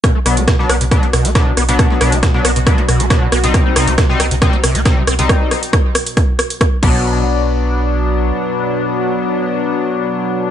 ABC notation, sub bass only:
X:1
M:4/4
L:1/16
Q:1/4=137
K:Bphr
V:1 name="Sub bass" clef=bass
z2 B,,, B,,, z2 B,,, B,,, z2 B,,, B,,, z2 B,,, B,,, | z2 B,,, B,,, z2 B,,, B,,, z2 B,,, B,,, z2 B,,, B,,, | z2 C,, C,, z2 C,, C,, z2 C,, C,, z2 C,, C,, | z12 z2 B,,,2- |
B,,,12 z4 | z16 |]